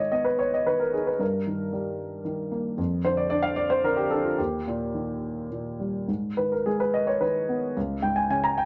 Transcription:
0.00 1.16 G#2 soft
0.00 0.65 D#3 soft
0.00 0.39 C#5 medium
0.00 0.10 D#5 medium
0.12 1.17 B3 soft
0.12 0.26 D#5 medium
0.25 0.39 B4 medium
0.39 0.52 C#5 medium
0.54 0.67 D#5 medium
0.66 1.19 D#3 soft
0.66 0.79 B4 medium
0.80 0.92 A#4 medium
0.93 1.19 D#4 soft
0.93 1.07 G#4 medium
1.07 1.21 B4 medium
1.19 2.74 G2 soft
1.19 2.21 A#4 medium
1.47 2.23 D#3 soft
1.73 2.75 G3 soft
2.25 2.76 D#3 soft
2.52 2.78 A#3 soft
2.78 4.34 F2 medium
3.05 3.82 D3 soft
3.05 3.19 C5 medium
3.17 3.28 D5 medium
3.30 4.10 D4 medium
3.30 3.43 D5 medium
3.42 3.57 F5 medium
3.56 3.71 D5 medium
3.70 3.84 C5 medium
3.84 4.37 D3 soft
3.84 3.97 A#4 medium
3.97 4.11 G4 medium
4.11 4.38 D4 soft
4.11 4.25 A4 medium
4.25 4.39 F4 medium
4.38 6.05 D#2 medium
4.38 5.46 G4 medium
4.67 5.49 A#2 soft
4.94 6.05 D#3 soft
5.51 6.07 A#2 soft
5.80 6.08 G3 soft
6.08 7.72 G#2 soft
6.37 7.19 D#3 soft
6.37 6.52 B4 medium
6.52 6.66 A#4 medium
6.66 7.73 G#3 soft
6.66 6.80 G#4 medium
6.80 6.93 B4 medium
6.94 7.08 D#5 medium
7.07 7.21 C#5 medium
7.21 7.74 D#3 soft
7.21 7.72 B4 medium
7.49 7.75 B3 soft
7.77 8.65 C#2 medium
8.02 8.65 G#2 soft
8.02 8.17 G5 medium
8.16 8.29 G#5 medium
8.30 8.65 C#3 soft
8.30 8.44 G#5 medium
8.44 8.57 A#5 medium
8.58 8.65 G5 medium

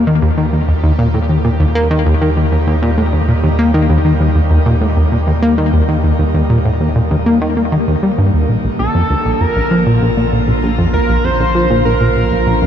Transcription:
0.00 8.46 D#2 medium
0.00 8.49 D#3 medium
0.00 8.49 G3 medium
0.00 12.67 A#3 medium
0.00 8.49 G4 medium
0.07 0.20 D#3 loud
0.22 0.31 D#2 loud
0.37 0.46 D#3 medium
0.53 0.61 D#2 medium
0.68 0.73 D#2 medium
0.83 0.92 D#2 loud
0.99 1.07 A#2 loud
1.14 1.19 A2 medium
1.29 1.38 D#2 medium
1.45 1.50 A#2 medium
1.60 1.65 D#2 loud
1.75 1.88 A#3 loud
1.91 2.03 D#3 loud
2.06 2.14 D#2 loud
2.21 2.30 D#3 medium
2.37 2.45 D#2 medium
2.52 2.57 D#2 medium
2.67 2.76 D#2 loud
2.82 2.91 A#2 loud
2.98 3.03 A2 medium
3.13 3.21 D#2 medium
3.28 3.33 A#2 medium
3.44 3.49 D#2 loud
3.59 3.72 A#3 medium
3.74 3.87 D#3 loud
3.90 3.98 D#2 loud
4.05 4.13 D#3 medium
4.20 4.29 D#2 medium
4.35 4.40 D#2 medium
4.50 4.59 D#2 loud
4.66 4.74 A#2 loud
4.81 4.86 A2 medium
4.97 5.05 D#2 medium
5.12 5.17 A#2 medium
5.27 5.32 D#2 loud
5.42 5.55 A#3 loud
5.58 5.71 D#3 loud
5.73 5.82 D#2 loud
5.89 5.97 D#3 medium
6.04 6.12 D#2 medium
6.19 6.24 D#2 medium
6.34 6.43 D#2 loud
6.50 6.58 A#2 loud
6.65 6.70 A2 medium
6.80 6.89 D#2 medium
6.96 7.01 A#2 medium
7.11 7.16 D#2 loud
7.26 7.39 A#3 loud
7.41 7.54 D#3 loud
7.57 7.62 A#3 medium
7.72 7.77 D#3 loud
7.88 7.96 D#2 loud
8.03 8.11 G3 medium
8.18 8.31 G2 loud
8.33 8.46 D#2 medium
8.49 8.57 A#1 medium
8.49 12.67 A#1 medium
8.49 12.67 D3 medium
8.64 8.69 A#1 medium
8.76 8.88 A#1 loud
8.76 12.67 F3 medium
8.76 9.42 A4 loud
8.95 9.03 F2 loud
9.10 9.15 D2 medium
9.10 12.67 F4 medium
9.25 9.34 A#1 medium
9.41 9.46 F2 medium
9.41 10.02 A#4 loud
9.56 9.61 A#1 loud
9.71 9.84 F3 medium
9.86 9.99 A#2 loud
10.02 10.10 A#1 loud
10.17 10.26 A#2 medium
10.32 10.41 A#1 medium
10.48 10.53 A#1 medium
10.63 10.72 A#1 loud
10.78 10.87 F2 loud
10.93 10.99 D2 medium
10.93 11.26 A#4 loud
11.09 11.17 A#1 medium
11.24 11.29 F2 medium
11.24 11.85 C5 loud
11.40 11.45 A#1 loud
11.55 11.68 F3 loud
11.70 11.83 A#2 loud
11.85 11.94 A#1 loud
11.85 12.67 A#4 loud
12.01 12.09 A#2 medium
12.16 12.25 A#1 medium
12.31 12.37 A#1 medium
12.47 12.55 A#1 loud
12.62 12.67 F2 loud

